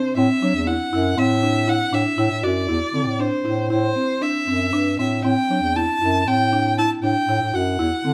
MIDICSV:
0, 0, Header, 1, 4, 480
1, 0, Start_track
1, 0, Tempo, 502934
1, 163, Time_signature, 5, 2, 24, 8
1, 3044, Tempo, 511945
1, 7683, End_track
2, 0, Start_track
2, 0, Title_t, "Violin"
2, 0, Program_c, 0, 40
2, 0, Note_on_c, 0, 72, 66
2, 150, Note_off_c, 0, 72, 0
2, 159, Note_on_c, 0, 76, 75
2, 642, Note_on_c, 0, 78, 76
2, 656, Note_off_c, 0, 76, 0
2, 1124, Note_on_c, 0, 76, 87
2, 1139, Note_off_c, 0, 78, 0
2, 1610, Note_on_c, 0, 78, 90
2, 1624, Note_off_c, 0, 76, 0
2, 1851, Note_on_c, 0, 76, 78
2, 1865, Note_off_c, 0, 78, 0
2, 2323, Note_on_c, 0, 74, 74
2, 2337, Note_off_c, 0, 76, 0
2, 3052, Note_on_c, 0, 72, 69
2, 3066, Note_off_c, 0, 74, 0
2, 3526, Note_off_c, 0, 72, 0
2, 3530, Note_on_c, 0, 72, 88
2, 4007, Note_on_c, 0, 76, 85
2, 4021, Note_off_c, 0, 72, 0
2, 4726, Note_off_c, 0, 76, 0
2, 4732, Note_on_c, 0, 76, 61
2, 4955, Note_off_c, 0, 76, 0
2, 4973, Note_on_c, 0, 79, 78
2, 5457, Note_on_c, 0, 81, 84
2, 5471, Note_off_c, 0, 79, 0
2, 5938, Note_on_c, 0, 79, 83
2, 5952, Note_off_c, 0, 81, 0
2, 6406, Note_off_c, 0, 79, 0
2, 6411, Note_on_c, 0, 81, 88
2, 6518, Note_off_c, 0, 81, 0
2, 6647, Note_on_c, 0, 79, 83
2, 7126, Note_on_c, 0, 78, 73
2, 7140, Note_off_c, 0, 79, 0
2, 7683, Note_off_c, 0, 78, 0
2, 7683, End_track
3, 0, Start_track
3, 0, Title_t, "Marimba"
3, 0, Program_c, 1, 12
3, 0, Note_on_c, 1, 60, 63
3, 102, Note_off_c, 1, 60, 0
3, 165, Note_on_c, 1, 60, 78
3, 343, Note_off_c, 1, 60, 0
3, 405, Note_on_c, 1, 62, 63
3, 583, Note_off_c, 1, 62, 0
3, 643, Note_on_c, 1, 64, 64
3, 821, Note_off_c, 1, 64, 0
3, 886, Note_on_c, 1, 64, 71
3, 1063, Note_off_c, 1, 64, 0
3, 1122, Note_on_c, 1, 60, 69
3, 1301, Note_off_c, 1, 60, 0
3, 1361, Note_on_c, 1, 62, 57
3, 1540, Note_off_c, 1, 62, 0
3, 1600, Note_on_c, 1, 64, 68
3, 1780, Note_off_c, 1, 64, 0
3, 1840, Note_on_c, 1, 62, 64
3, 2020, Note_off_c, 1, 62, 0
3, 2081, Note_on_c, 1, 64, 65
3, 2261, Note_off_c, 1, 64, 0
3, 2322, Note_on_c, 1, 66, 58
3, 2502, Note_off_c, 1, 66, 0
3, 2562, Note_on_c, 1, 64, 63
3, 2742, Note_off_c, 1, 64, 0
3, 2803, Note_on_c, 1, 60, 54
3, 2985, Note_off_c, 1, 60, 0
3, 3048, Note_on_c, 1, 62, 60
3, 3226, Note_off_c, 1, 62, 0
3, 3285, Note_on_c, 1, 64, 63
3, 3464, Note_off_c, 1, 64, 0
3, 3526, Note_on_c, 1, 64, 63
3, 3704, Note_off_c, 1, 64, 0
3, 3765, Note_on_c, 1, 60, 53
3, 3945, Note_off_c, 1, 60, 0
3, 4005, Note_on_c, 1, 62, 58
3, 4186, Note_off_c, 1, 62, 0
3, 4247, Note_on_c, 1, 60, 54
3, 4428, Note_off_c, 1, 60, 0
3, 4487, Note_on_c, 1, 62, 65
3, 4668, Note_off_c, 1, 62, 0
3, 4732, Note_on_c, 1, 60, 51
3, 4912, Note_off_c, 1, 60, 0
3, 4974, Note_on_c, 1, 60, 67
3, 5154, Note_off_c, 1, 60, 0
3, 5216, Note_on_c, 1, 62, 58
3, 5395, Note_off_c, 1, 62, 0
3, 5457, Note_on_c, 1, 64, 62
3, 5635, Note_off_c, 1, 64, 0
3, 5696, Note_on_c, 1, 64, 62
3, 5875, Note_off_c, 1, 64, 0
3, 5940, Note_on_c, 1, 60, 60
3, 6117, Note_off_c, 1, 60, 0
3, 6173, Note_on_c, 1, 62, 55
3, 6352, Note_off_c, 1, 62, 0
3, 6418, Note_on_c, 1, 64, 70
3, 6594, Note_off_c, 1, 64, 0
3, 6650, Note_on_c, 1, 62, 60
3, 6829, Note_off_c, 1, 62, 0
3, 6884, Note_on_c, 1, 64, 62
3, 7065, Note_off_c, 1, 64, 0
3, 7120, Note_on_c, 1, 66, 55
3, 7301, Note_off_c, 1, 66, 0
3, 7359, Note_on_c, 1, 64, 73
3, 7540, Note_off_c, 1, 64, 0
3, 7596, Note_on_c, 1, 60, 56
3, 7683, Note_off_c, 1, 60, 0
3, 7683, End_track
4, 0, Start_track
4, 0, Title_t, "Bass clarinet"
4, 0, Program_c, 2, 71
4, 162, Note_on_c, 2, 45, 83
4, 265, Note_off_c, 2, 45, 0
4, 406, Note_on_c, 2, 54, 82
4, 507, Note_off_c, 2, 54, 0
4, 528, Note_on_c, 2, 40, 68
4, 731, Note_off_c, 2, 40, 0
4, 880, Note_on_c, 2, 42, 82
4, 1086, Note_off_c, 2, 42, 0
4, 1115, Note_on_c, 2, 45, 78
4, 1738, Note_off_c, 2, 45, 0
4, 1840, Note_on_c, 2, 45, 74
4, 1943, Note_off_c, 2, 45, 0
4, 2082, Note_on_c, 2, 45, 86
4, 2185, Note_off_c, 2, 45, 0
4, 2202, Note_on_c, 2, 45, 58
4, 2305, Note_off_c, 2, 45, 0
4, 2327, Note_on_c, 2, 42, 69
4, 2532, Note_off_c, 2, 42, 0
4, 2563, Note_on_c, 2, 40, 76
4, 2666, Note_off_c, 2, 40, 0
4, 2805, Note_on_c, 2, 50, 70
4, 2927, Note_on_c, 2, 45, 64
4, 2941, Note_off_c, 2, 50, 0
4, 3133, Note_off_c, 2, 45, 0
4, 3288, Note_on_c, 2, 45, 70
4, 3492, Note_off_c, 2, 45, 0
4, 3525, Note_on_c, 2, 45, 79
4, 3731, Note_off_c, 2, 45, 0
4, 4250, Note_on_c, 2, 42, 60
4, 4465, Note_off_c, 2, 42, 0
4, 4486, Note_on_c, 2, 43, 57
4, 4704, Note_off_c, 2, 43, 0
4, 4727, Note_on_c, 2, 45, 62
4, 4945, Note_off_c, 2, 45, 0
4, 4964, Note_on_c, 2, 45, 80
4, 5071, Note_off_c, 2, 45, 0
4, 5204, Note_on_c, 2, 54, 70
4, 5311, Note_off_c, 2, 54, 0
4, 5323, Note_on_c, 2, 40, 61
4, 5534, Note_off_c, 2, 40, 0
4, 5685, Note_on_c, 2, 42, 79
4, 5895, Note_off_c, 2, 42, 0
4, 5923, Note_on_c, 2, 45, 73
4, 6546, Note_off_c, 2, 45, 0
4, 6638, Note_on_c, 2, 45, 73
4, 6746, Note_off_c, 2, 45, 0
4, 6881, Note_on_c, 2, 45, 81
4, 6987, Note_off_c, 2, 45, 0
4, 7006, Note_on_c, 2, 45, 62
4, 7109, Note_off_c, 2, 45, 0
4, 7124, Note_on_c, 2, 42, 69
4, 7331, Note_off_c, 2, 42, 0
4, 7357, Note_on_c, 2, 40, 68
4, 7464, Note_off_c, 2, 40, 0
4, 7599, Note_on_c, 2, 50, 78
4, 7683, Note_off_c, 2, 50, 0
4, 7683, End_track
0, 0, End_of_file